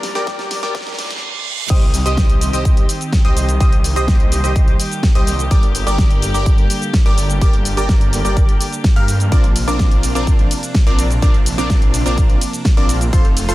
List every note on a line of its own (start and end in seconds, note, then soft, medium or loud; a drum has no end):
0.00 1.72 G2 medium
0.00 1.19 A#2 medium
0.00 1.18 G3 medium
0.00 1.72 A#3 medium
0.00 1.19 D4 medium
0.00 1.72 D4 medium
0.00 1.72 G4 medium
0.00 1.19 A#4 medium
0.00 1.72 D5 loud
0.00 snare medium
0.00 open hi-hat loud
0.00 riser medium
0.15 0.60 G4 medium
0.15 0.60 A#4 medium
0.15 0.60 D5 loud
0.15 0.60 D6 loud
0.15 snare medium
0.15 closed hi-hat soft
0.27 kick loud
0.27 snare loud
0.27 closed hi-hat medium
0.39 snare medium
0.39 closed hi-hat soft
0.51 snare loud
0.51 open hi-hat loud
0.63 0.96 G4 medium
0.63 0.96 A#4 medium
0.63 0.96 D5 medium
0.63 0.96 D6 medium
0.63 snare medium
0.63 closed hi-hat soft
0.75 kick loud
0.75 snare loud
0.75 closed hi-hat medium
0.75 reverse cymbal medium
0.81 snare medium
0.87 snare medium
0.87 closed hi-hat soft
0.93 snare medium
0.99 snare loud
0.99 open hi-hat loud
1.05 snare medium
1.10 snare medium
1.10 closed hi-hat soft
1.16 snare medium
1.70 2.03 C2 loud
1.70 5.47 D#3 medium
1.70 9.28 G3 medium
1.70 3.59 C4 medium
1.70 1.82 G4 medium
1.70 9.28 G4 medium
1.70 1.82 C5 medium
1.70 1.82 D#5 loud
1.70 1.82 D#6 loud
1.70 kick loud
1.70 closed hi-hat medium
1.70 crash loud
1.70 shaker soft
1.82 closed hi-hat soft
1.94 open hi-hat loud
1.94 shaker medium
2.06 2.51 C2 loud
2.06 2.50 G4 loud
2.06 2.50 C5 medium
2.06 2.50 D#5 loud
2.06 2.50 D#6 loud
2.06 closed hi-hat soft
2.06 shaker soft
2.17 kick loud
2.17 snare loud
2.17 closed hi-hat medium
2.17 shaker soft
2.30 closed hi-hat soft
2.41 open hi-hat loud
2.41 shaker medium
2.53 2.84 C2 medium
2.53 2.86 G4 medium
2.53 2.86 C5 medium
2.53 2.86 D#5 medium
2.53 2.86 D#6 medium
2.53 closed hi-hat soft
2.53 shaker soft
2.65 kick loud
2.65 closed hi-hat medium
2.65 shaker soft
2.77 closed hi-hat soft
2.89 open hi-hat loud
2.89 shaker medium
3.01 closed hi-hat soft
3.01 shaker soft
3.13 kick loud
3.13 snare loud
3.13 closed hi-hat medium
3.13 shaker soft
3.25 3.58 C2 medium
3.25 3.45 G4 medium
3.25 3.45 C5 medium
3.25 3.45 D#5 loud
3.25 3.45 D#6 loud
3.25 closed hi-hat soft
3.37 open hi-hat loud
3.37 shaker medium
3.49 closed hi-hat soft
3.49 shaker soft
3.60 3.94 C2 loud
3.60 13.09 A#3 medium
3.60 3.73 G4 medium
3.60 3.73 C5 medium
3.60 3.73 D#5 loud
3.60 3.73 D#6 loud
3.60 kick loud
3.60 closed hi-hat medium
3.60 shaker soft
3.72 closed hi-hat soft
3.84 open hi-hat loud
3.84 shaker medium
3.96 4.41 C2 medium
3.96 4.41 G4 medium
3.96 4.41 C5 medium
3.96 4.41 D#5 loud
3.96 4.41 D#6 loud
3.96 closed hi-hat soft
3.96 shaker soft
4.08 kick loud
4.08 snare loud
4.08 closed hi-hat medium
4.08 shaker soft
4.20 closed hi-hat soft
4.32 open hi-hat loud
4.32 shaker medium
4.44 4.74 C2 medium
4.44 4.77 G4 medium
4.44 4.77 C5 medium
4.44 4.77 D#5 medium
4.44 4.77 D#6 medium
4.44 closed hi-hat soft
4.44 shaker soft
4.56 kick loud
4.56 closed hi-hat medium
4.56 shaker soft
4.68 closed hi-hat soft
4.80 open hi-hat loud
4.80 shaker medium
4.91 closed hi-hat soft
4.91 shaker soft
5.03 kick loud
5.03 snare loud
5.03 closed hi-hat medium
5.03 shaker soft
5.15 5.49 C2 loud
5.15 5.35 G4 medium
5.15 5.35 C5 medium
5.15 5.35 D#5 loud
5.15 5.35 D#6 loud
5.15 closed hi-hat soft
5.27 open hi-hat loud
5.27 shaker medium
5.39 closed hi-hat soft
5.39 shaker soft
5.51 5.84 G1 loud
5.51 9.28 D3 medium
5.51 5.63 G4 medium
5.51 5.63 A#4 medium
5.51 5.63 D5 loud
5.51 5.63 D6 loud
5.51 kick loud
5.51 closed hi-hat medium
5.51 shaker soft
5.63 closed hi-hat soft
5.75 open hi-hat loud
5.75 shaker medium
5.87 6.32 G1 loud
5.87 6.31 G4 loud
5.87 6.31 A#4 medium
5.87 6.31 D5 loud
5.87 6.31 D6 loud
5.87 closed hi-hat soft
5.87 shaker soft
5.98 kick loud
5.98 snare loud
5.98 closed hi-hat medium
5.98 shaker soft
6.11 closed hi-hat soft
6.22 open hi-hat loud
6.22 shaker medium
6.34 6.65 G1 loud
6.34 6.67 G4 medium
6.34 6.67 A#4 medium
6.34 6.67 D5 medium
6.34 6.67 D6 medium
6.34 closed hi-hat soft
6.34 shaker soft
6.46 kick loud
6.46 closed hi-hat medium
6.46 shaker soft
6.58 closed hi-hat soft
6.70 open hi-hat loud
6.70 shaker medium
6.82 closed hi-hat soft
6.82 shaker soft
6.94 kick loud
6.94 snare loud
6.94 closed hi-hat medium
6.94 shaker soft
7.06 7.39 G1 loud
7.06 7.26 G4 medium
7.06 7.26 A#4 medium
7.06 7.26 D5 loud
7.06 7.26 D6 loud
7.06 closed hi-hat soft
7.18 open hi-hat loud
7.18 shaker medium
7.30 closed hi-hat soft
7.30 shaker soft
7.41 7.75 G1 loud
7.41 7.54 G4 medium
7.41 7.54 A#4 medium
7.41 7.54 D5 loud
7.41 7.54 D6 loud
7.41 kick loud
7.41 closed hi-hat medium
7.41 shaker soft
7.53 closed hi-hat soft
7.65 open hi-hat loud
7.65 shaker medium
7.77 8.22 G1 medium
7.77 8.22 G4 loud
7.77 8.22 A#4 medium
7.77 8.22 D5 loud
7.77 8.22 D6 loud
7.77 closed hi-hat soft
7.77 shaker soft
7.89 kick loud
7.89 snare loud
7.89 closed hi-hat medium
7.89 shaker soft
8.01 closed hi-hat soft
8.13 open hi-hat loud
8.13 shaker medium
8.25 8.55 G1 loud
8.25 8.58 G4 medium
8.25 8.58 A#4 medium
8.25 8.58 D5 medium
8.25 8.58 D6 medium
8.25 closed hi-hat soft
8.25 shaker soft
8.37 kick loud
8.37 closed hi-hat medium
8.37 shaker soft
8.49 closed hi-hat soft
8.61 open hi-hat loud
8.61 shaker medium
8.72 closed hi-hat soft
8.72 shaker soft
8.84 kick loud
8.84 snare loud
8.84 closed hi-hat medium
8.84 shaker soft
8.96 9.30 G2 loud
8.96 9.09 G4 medium
8.96 9.09 A#4 medium
8.96 9.09 F5 loud
8.96 9.09 F6 loud
8.96 closed hi-hat soft
9.08 open hi-hat loud
9.08 shaker medium
9.20 closed hi-hat soft
9.20 shaker soft
9.32 9.65 A#1 loud
9.32 13.55 C3 medium
9.32 13.09 F3 medium
9.32 9.44 C4 medium
9.32 9.44 D4 medium
9.32 13.09 D4 medium
9.32 9.44 F4 medium
9.32 9.44 A#4 medium
9.32 9.44 D5 loud
9.32 9.44 D6 loud
9.32 kick loud
9.32 closed hi-hat medium
9.32 shaker soft
9.44 closed hi-hat soft
9.56 open hi-hat loud
9.56 ride medium
9.56 shaker medium
9.68 10.13 A#1 loud
9.68 10.12 C4 loud
9.68 10.12 D4 medium
9.68 10.12 F4 medium
9.68 10.12 A#4 medium
9.68 10.12 D5 loud
9.68 10.12 D6 loud
9.68 closed hi-hat soft
9.68 shaker soft
9.79 kick loud
9.79 snare loud
9.79 closed hi-hat medium
9.79 shaker soft
9.91 closed hi-hat soft
10.03 open hi-hat loud
10.03 ride medium
10.03 shaker medium
10.15 10.46 A#1 medium
10.15 10.48 C4 medium
10.15 10.48 D4 medium
10.15 10.48 F4 medium
10.15 10.48 A#4 medium
10.15 10.48 D5 medium
10.15 10.48 D6 medium
10.15 closed hi-hat soft
10.15 shaker soft
10.27 kick loud
10.27 closed hi-hat medium
10.27 shaker soft
10.39 closed hi-hat soft
10.51 open hi-hat loud
10.51 ride medium
10.51 shaker medium
10.63 closed hi-hat soft
10.63 shaker soft
10.75 kick loud
10.75 snare loud
10.75 closed hi-hat medium
10.75 shaker soft
10.87 11.20 A#1 loud
10.87 11.07 C4 medium
10.87 11.07 D4 medium
10.87 11.07 F4 medium
10.87 11.07 A#4 medium
10.87 11.07 D5 loud
10.87 11.07 D6 loud
10.87 closed hi-hat soft
10.99 open hi-hat loud
10.99 ride medium
10.99 shaker medium
11.11 closed hi-hat soft
11.11 shaker soft
11.22 11.56 A#1 loud
11.22 11.35 C4 medium
11.22 11.35 D4 medium
11.22 11.35 F4 medium
11.22 11.35 A#4 medium
11.22 11.35 D5 loud
11.22 11.35 D6 loud
11.22 kick loud
11.22 closed hi-hat medium
11.22 shaker soft
11.34 closed hi-hat soft
11.46 open hi-hat loud
11.46 ride medium
11.46 shaker medium
11.58 12.03 A#1 loud
11.58 12.03 C4 loud
11.58 12.03 D4 medium
11.58 12.03 F4 medium
11.58 12.03 A#4 medium
11.58 12.03 D5 loud
11.58 12.03 D6 loud
11.58 closed hi-hat soft
11.58 shaker soft
11.70 kick loud
11.70 snare loud
11.70 closed hi-hat medium
11.70 shaker soft
11.82 closed hi-hat soft
11.94 open hi-hat loud
11.94 ride medium
11.94 shaker medium
12.06 12.36 A#1 loud
12.06 12.39 C4 medium
12.06 12.39 D4 medium
12.06 12.39 F4 medium
12.06 12.39 A#4 medium
12.06 12.39 D5 medium
12.06 12.39 D6 medium
12.06 closed hi-hat soft
12.06 shaker soft
12.18 kick loud
12.18 closed hi-hat medium
12.18 shaker soft
12.30 closed hi-hat soft
12.41 open hi-hat loud
12.41 ride medium
12.41 shaker medium
12.53 closed hi-hat soft
12.53 shaker soft
12.65 kick loud
12.65 snare loud
12.65 closed hi-hat medium
12.65 shaker soft
12.77 13.10 A#1 medium
12.77 12.97 C4 medium
12.77 12.97 D4 medium
12.77 12.97 F4 medium
12.77 12.97 A#4 medium
12.77 12.97 D5 loud
12.77 12.97 D6 loud
12.77 closed hi-hat soft
12.89 open hi-hat loud
12.89 ride medium
12.89 shaker medium
13.01 closed hi-hat soft
13.01 shaker soft
13.13 13.46 F1 loud
13.13 13.55 F3 medium
13.13 13.55 A3 medium
13.13 13.25 F4 medium
13.13 13.55 F4 medium
13.13 13.25 A4 medium
13.13 13.25 C5 loud
13.13 13.25 C6 loud
13.13 kick loud
13.13 closed hi-hat medium
13.13 shaker soft
13.25 closed hi-hat soft
13.37 open hi-hat loud
13.37 ride medium
13.37 shaker medium
13.49 13.55 F1 loud
13.49 13.55 F4 loud
13.49 13.55 A4 medium
13.49 13.55 C5 loud
13.49 13.55 C6 loud
13.49 closed hi-hat soft
13.49 shaker soft